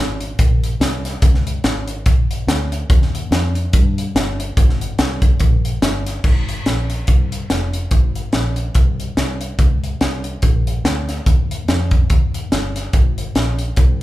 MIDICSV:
0, 0, Header, 1, 3, 480
1, 0, Start_track
1, 0, Key_signature, -4, "major"
1, 0, Tempo, 418118
1, 1407, Time_signature, 4, 2, 24, 8
1, 16104, End_track
2, 0, Start_track
2, 0, Title_t, "Fingered electric bass"
2, 0, Program_c, 0, 33
2, 0, Note_on_c, 0, 32, 84
2, 372, Note_off_c, 0, 32, 0
2, 448, Note_on_c, 0, 34, 91
2, 856, Note_off_c, 0, 34, 0
2, 920, Note_on_c, 0, 36, 87
2, 1331, Note_off_c, 0, 36, 0
2, 1405, Note_on_c, 0, 37, 100
2, 1814, Note_off_c, 0, 37, 0
2, 1882, Note_on_c, 0, 32, 92
2, 2368, Note_off_c, 0, 32, 0
2, 2368, Note_on_c, 0, 34, 88
2, 2775, Note_off_c, 0, 34, 0
2, 2839, Note_on_c, 0, 38, 91
2, 3250, Note_off_c, 0, 38, 0
2, 3327, Note_on_c, 0, 39, 103
2, 3735, Note_off_c, 0, 39, 0
2, 3797, Note_on_c, 0, 41, 83
2, 4210, Note_off_c, 0, 41, 0
2, 4286, Note_on_c, 0, 43, 94
2, 4695, Note_off_c, 0, 43, 0
2, 4762, Note_on_c, 0, 31, 88
2, 5173, Note_off_c, 0, 31, 0
2, 5247, Note_on_c, 0, 32, 102
2, 5656, Note_off_c, 0, 32, 0
2, 5725, Note_on_c, 0, 36, 81
2, 6135, Note_off_c, 0, 36, 0
2, 6208, Note_on_c, 0, 34, 90
2, 6616, Note_off_c, 0, 34, 0
2, 6687, Note_on_c, 0, 31, 84
2, 7096, Note_off_c, 0, 31, 0
2, 7165, Note_on_c, 0, 32, 87
2, 7576, Note_off_c, 0, 32, 0
2, 7649, Note_on_c, 0, 34, 78
2, 8058, Note_off_c, 0, 34, 0
2, 8128, Note_on_c, 0, 36, 83
2, 8538, Note_off_c, 0, 36, 0
2, 8612, Note_on_c, 0, 29, 82
2, 9020, Note_off_c, 0, 29, 0
2, 9085, Note_on_c, 0, 32, 100
2, 9497, Note_off_c, 0, 32, 0
2, 9570, Note_on_c, 0, 34, 80
2, 9980, Note_off_c, 0, 34, 0
2, 10046, Note_on_c, 0, 36, 85
2, 10457, Note_off_c, 0, 36, 0
2, 10531, Note_on_c, 0, 36, 82
2, 10940, Note_off_c, 0, 36, 0
2, 11009, Note_on_c, 0, 37, 99
2, 11419, Note_off_c, 0, 37, 0
2, 11490, Note_on_c, 0, 36, 80
2, 11900, Note_off_c, 0, 36, 0
2, 11971, Note_on_c, 0, 34, 97
2, 12380, Note_off_c, 0, 34, 0
2, 12449, Note_on_c, 0, 38, 89
2, 12859, Note_off_c, 0, 38, 0
2, 12930, Note_on_c, 0, 39, 100
2, 13340, Note_off_c, 0, 39, 0
2, 13410, Note_on_c, 0, 41, 82
2, 13820, Note_off_c, 0, 41, 0
2, 13892, Note_on_c, 0, 39, 90
2, 14301, Note_off_c, 0, 39, 0
2, 14374, Note_on_c, 0, 31, 81
2, 14782, Note_off_c, 0, 31, 0
2, 14851, Note_on_c, 0, 32, 86
2, 15259, Note_off_c, 0, 32, 0
2, 15328, Note_on_c, 0, 34, 75
2, 15738, Note_off_c, 0, 34, 0
2, 15812, Note_on_c, 0, 36, 98
2, 16104, Note_off_c, 0, 36, 0
2, 16104, End_track
3, 0, Start_track
3, 0, Title_t, "Drums"
3, 236, Note_on_c, 9, 42, 71
3, 351, Note_off_c, 9, 42, 0
3, 445, Note_on_c, 9, 42, 98
3, 448, Note_on_c, 9, 36, 115
3, 560, Note_off_c, 9, 42, 0
3, 562, Note_off_c, 9, 36, 0
3, 730, Note_on_c, 9, 42, 76
3, 844, Note_off_c, 9, 42, 0
3, 932, Note_on_c, 9, 38, 92
3, 934, Note_on_c, 9, 42, 92
3, 1047, Note_off_c, 9, 38, 0
3, 1049, Note_off_c, 9, 42, 0
3, 1206, Note_on_c, 9, 42, 83
3, 1207, Note_on_c, 9, 38, 32
3, 1320, Note_off_c, 9, 42, 0
3, 1322, Note_off_c, 9, 38, 0
3, 1401, Note_on_c, 9, 42, 84
3, 1404, Note_on_c, 9, 36, 122
3, 1515, Note_off_c, 9, 42, 0
3, 1519, Note_off_c, 9, 36, 0
3, 1542, Note_on_c, 9, 38, 32
3, 1657, Note_off_c, 9, 38, 0
3, 1685, Note_on_c, 9, 42, 79
3, 1800, Note_off_c, 9, 42, 0
3, 1882, Note_on_c, 9, 42, 69
3, 1885, Note_on_c, 9, 38, 95
3, 1996, Note_off_c, 9, 42, 0
3, 2000, Note_off_c, 9, 38, 0
3, 2153, Note_on_c, 9, 42, 77
3, 2268, Note_off_c, 9, 42, 0
3, 2362, Note_on_c, 9, 42, 94
3, 2366, Note_on_c, 9, 36, 112
3, 2477, Note_off_c, 9, 42, 0
3, 2481, Note_off_c, 9, 36, 0
3, 2648, Note_on_c, 9, 42, 75
3, 2763, Note_off_c, 9, 42, 0
3, 2852, Note_on_c, 9, 38, 94
3, 2854, Note_on_c, 9, 42, 93
3, 2967, Note_off_c, 9, 38, 0
3, 2969, Note_off_c, 9, 42, 0
3, 3124, Note_on_c, 9, 42, 74
3, 3239, Note_off_c, 9, 42, 0
3, 3327, Note_on_c, 9, 36, 118
3, 3329, Note_on_c, 9, 42, 85
3, 3441, Note_off_c, 9, 36, 0
3, 3444, Note_off_c, 9, 42, 0
3, 3467, Note_on_c, 9, 38, 33
3, 3582, Note_off_c, 9, 38, 0
3, 3614, Note_on_c, 9, 42, 79
3, 3729, Note_off_c, 9, 42, 0
3, 3811, Note_on_c, 9, 42, 75
3, 3814, Note_on_c, 9, 38, 102
3, 3925, Note_off_c, 9, 42, 0
3, 3929, Note_off_c, 9, 38, 0
3, 4079, Note_on_c, 9, 42, 74
3, 4194, Note_off_c, 9, 42, 0
3, 4284, Note_on_c, 9, 42, 99
3, 4288, Note_on_c, 9, 36, 110
3, 4399, Note_off_c, 9, 42, 0
3, 4403, Note_off_c, 9, 36, 0
3, 4571, Note_on_c, 9, 42, 81
3, 4686, Note_off_c, 9, 42, 0
3, 4774, Note_on_c, 9, 38, 100
3, 4776, Note_on_c, 9, 42, 93
3, 4888, Note_off_c, 9, 38, 0
3, 4890, Note_off_c, 9, 42, 0
3, 5049, Note_on_c, 9, 42, 83
3, 5164, Note_off_c, 9, 42, 0
3, 5247, Note_on_c, 9, 36, 116
3, 5250, Note_on_c, 9, 42, 90
3, 5362, Note_off_c, 9, 36, 0
3, 5365, Note_off_c, 9, 42, 0
3, 5389, Note_on_c, 9, 38, 34
3, 5503, Note_off_c, 9, 38, 0
3, 5526, Note_on_c, 9, 42, 82
3, 5641, Note_off_c, 9, 42, 0
3, 5723, Note_on_c, 9, 42, 76
3, 5727, Note_on_c, 9, 38, 108
3, 5838, Note_off_c, 9, 42, 0
3, 5841, Note_off_c, 9, 38, 0
3, 5991, Note_on_c, 9, 42, 80
3, 5992, Note_on_c, 9, 36, 95
3, 6105, Note_off_c, 9, 42, 0
3, 6107, Note_off_c, 9, 36, 0
3, 6194, Note_on_c, 9, 42, 93
3, 6205, Note_on_c, 9, 36, 107
3, 6309, Note_off_c, 9, 42, 0
3, 6320, Note_off_c, 9, 36, 0
3, 6485, Note_on_c, 9, 42, 79
3, 6600, Note_off_c, 9, 42, 0
3, 6685, Note_on_c, 9, 38, 101
3, 6687, Note_on_c, 9, 42, 87
3, 6799, Note_off_c, 9, 38, 0
3, 6801, Note_off_c, 9, 42, 0
3, 6963, Note_on_c, 9, 42, 78
3, 6964, Note_on_c, 9, 38, 33
3, 7078, Note_off_c, 9, 42, 0
3, 7079, Note_off_c, 9, 38, 0
3, 7161, Note_on_c, 9, 49, 84
3, 7165, Note_on_c, 9, 36, 109
3, 7276, Note_off_c, 9, 49, 0
3, 7279, Note_off_c, 9, 36, 0
3, 7446, Note_on_c, 9, 42, 78
3, 7561, Note_off_c, 9, 42, 0
3, 7644, Note_on_c, 9, 42, 67
3, 7648, Note_on_c, 9, 38, 93
3, 7759, Note_off_c, 9, 42, 0
3, 7763, Note_off_c, 9, 38, 0
3, 7918, Note_on_c, 9, 42, 72
3, 8033, Note_off_c, 9, 42, 0
3, 8119, Note_on_c, 9, 42, 84
3, 8128, Note_on_c, 9, 36, 102
3, 8233, Note_off_c, 9, 42, 0
3, 8243, Note_off_c, 9, 36, 0
3, 8405, Note_on_c, 9, 42, 80
3, 8520, Note_off_c, 9, 42, 0
3, 8609, Note_on_c, 9, 38, 90
3, 8611, Note_on_c, 9, 42, 86
3, 8724, Note_off_c, 9, 38, 0
3, 8726, Note_off_c, 9, 42, 0
3, 8880, Note_on_c, 9, 42, 77
3, 8994, Note_off_c, 9, 42, 0
3, 9079, Note_on_c, 9, 42, 76
3, 9085, Note_on_c, 9, 36, 108
3, 9194, Note_off_c, 9, 42, 0
3, 9199, Note_off_c, 9, 36, 0
3, 9362, Note_on_c, 9, 42, 72
3, 9477, Note_off_c, 9, 42, 0
3, 9558, Note_on_c, 9, 42, 69
3, 9561, Note_on_c, 9, 38, 93
3, 9673, Note_off_c, 9, 42, 0
3, 9676, Note_off_c, 9, 38, 0
3, 9828, Note_on_c, 9, 42, 71
3, 9943, Note_off_c, 9, 42, 0
3, 10040, Note_on_c, 9, 42, 89
3, 10047, Note_on_c, 9, 36, 107
3, 10155, Note_off_c, 9, 42, 0
3, 10162, Note_off_c, 9, 36, 0
3, 10328, Note_on_c, 9, 42, 75
3, 10443, Note_off_c, 9, 42, 0
3, 10528, Note_on_c, 9, 38, 91
3, 10530, Note_on_c, 9, 42, 84
3, 10643, Note_off_c, 9, 38, 0
3, 10645, Note_off_c, 9, 42, 0
3, 10799, Note_on_c, 9, 42, 76
3, 10914, Note_off_c, 9, 42, 0
3, 11005, Note_on_c, 9, 42, 80
3, 11006, Note_on_c, 9, 36, 106
3, 11120, Note_off_c, 9, 42, 0
3, 11121, Note_off_c, 9, 36, 0
3, 11292, Note_on_c, 9, 42, 74
3, 11406, Note_off_c, 9, 42, 0
3, 11489, Note_on_c, 9, 42, 65
3, 11492, Note_on_c, 9, 38, 100
3, 11604, Note_off_c, 9, 42, 0
3, 11607, Note_off_c, 9, 38, 0
3, 11756, Note_on_c, 9, 42, 71
3, 11871, Note_off_c, 9, 42, 0
3, 11964, Note_on_c, 9, 42, 90
3, 11971, Note_on_c, 9, 36, 107
3, 12079, Note_off_c, 9, 42, 0
3, 12086, Note_off_c, 9, 36, 0
3, 12251, Note_on_c, 9, 42, 77
3, 12365, Note_off_c, 9, 42, 0
3, 12456, Note_on_c, 9, 38, 99
3, 12458, Note_on_c, 9, 42, 88
3, 12570, Note_off_c, 9, 38, 0
3, 12573, Note_off_c, 9, 42, 0
3, 12728, Note_on_c, 9, 42, 78
3, 12729, Note_on_c, 9, 38, 32
3, 12843, Note_off_c, 9, 42, 0
3, 12844, Note_off_c, 9, 38, 0
3, 12930, Note_on_c, 9, 42, 84
3, 12931, Note_on_c, 9, 36, 106
3, 13045, Note_off_c, 9, 42, 0
3, 13046, Note_off_c, 9, 36, 0
3, 13216, Note_on_c, 9, 42, 74
3, 13330, Note_off_c, 9, 42, 0
3, 13412, Note_on_c, 9, 42, 74
3, 13415, Note_on_c, 9, 38, 101
3, 13527, Note_off_c, 9, 42, 0
3, 13530, Note_off_c, 9, 38, 0
3, 13674, Note_on_c, 9, 42, 71
3, 13678, Note_on_c, 9, 36, 90
3, 13789, Note_off_c, 9, 42, 0
3, 13793, Note_off_c, 9, 36, 0
3, 13888, Note_on_c, 9, 42, 86
3, 13893, Note_on_c, 9, 36, 101
3, 14003, Note_off_c, 9, 42, 0
3, 14007, Note_off_c, 9, 36, 0
3, 14171, Note_on_c, 9, 42, 80
3, 14286, Note_off_c, 9, 42, 0
3, 14372, Note_on_c, 9, 38, 99
3, 14374, Note_on_c, 9, 42, 87
3, 14487, Note_off_c, 9, 38, 0
3, 14489, Note_off_c, 9, 42, 0
3, 14647, Note_on_c, 9, 42, 82
3, 14648, Note_on_c, 9, 38, 31
3, 14762, Note_off_c, 9, 42, 0
3, 14763, Note_off_c, 9, 38, 0
3, 14847, Note_on_c, 9, 42, 89
3, 14849, Note_on_c, 9, 36, 114
3, 14962, Note_off_c, 9, 42, 0
3, 14964, Note_off_c, 9, 36, 0
3, 15130, Note_on_c, 9, 42, 75
3, 15244, Note_off_c, 9, 42, 0
3, 15330, Note_on_c, 9, 42, 66
3, 15333, Note_on_c, 9, 38, 97
3, 15445, Note_off_c, 9, 42, 0
3, 15448, Note_off_c, 9, 38, 0
3, 15597, Note_on_c, 9, 42, 71
3, 15711, Note_off_c, 9, 42, 0
3, 15802, Note_on_c, 9, 42, 90
3, 15810, Note_on_c, 9, 36, 103
3, 15917, Note_off_c, 9, 42, 0
3, 15925, Note_off_c, 9, 36, 0
3, 16104, End_track
0, 0, End_of_file